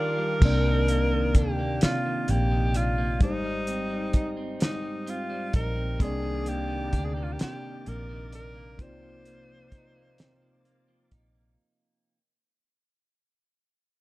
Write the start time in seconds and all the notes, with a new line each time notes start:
Already playing: D#3 G3 D4 F4 G4 A#4 D5 F5 D6
0.18 G3
0.40 C2 C3 A#3 D4, kick, crash
0.45 D5
0.66 D#3
0.88 A#3, closed hi-hat
1.12 D#3
1.35 D2 D4 G4, kick, closed hi-hat
1.59 A#3
1.81 C3 F4, muted fingered electric bass stroke, snare, closed hi-hat
2.05 D#3
2.28 A#1 A#3 G4, closed hi-hat
2.52 D#3
2.74 D4 F4, closed hi-hat
2.98 A#3
3.20 G#1 G#2 G3 D#4 G4, kick, closed hi-hat
3.25 C5
3.44 G3
3.67 C4, closed hi-hat
3.90 G3
4.13 D#4, kick, closed hi-hat
4.37 C4
4.60 G#2 D#4, snare, closed hi-hat
4.83 G3
5.06 C4 F4, closed hi-hat
5.30 G3
5.53 A#1 D#4 A#4, kick, closed hi-hat
5.76 C4
5.99 C2 C3 A#3 G#4 A#4 D5 D6, kick, closed hi-hat
6.03 D4 D5
6.09 D4
6.23 D#3
6.46 A#3 G4, closed hi-hat
6.69 D#3
6.93 D2 D4, kick, closed hi-hat
7.05 G#4
7.14 A#3 G4
7.23 F4
7.32 G4
7.39 C3 G4, muted fingered electric bass stroke, snare, closed hi-hat
7.63 D#3
7.86 A#1 A#3 A#4, closed hi-hat
8.09 D#3
8.32 D4 A#4, closed hi-hat
8.55 A#3
8.78 C2 C3 A#3 D#4 F4 C5 F5, kick, closed hi-hat
8.83 D5
9.02 F3
9.25 A#3, closed hi-hat
9.49 F3
9.72 D#4, kick, closed hi-hat
9.96 A#3
10.18 C3, snare, closed hi-hat
10.42 F3
10.65 A#3, closed hi-hat
10.88 F3
11.11 A#1 D#4, kick, closed hi-hat
11.35 A#3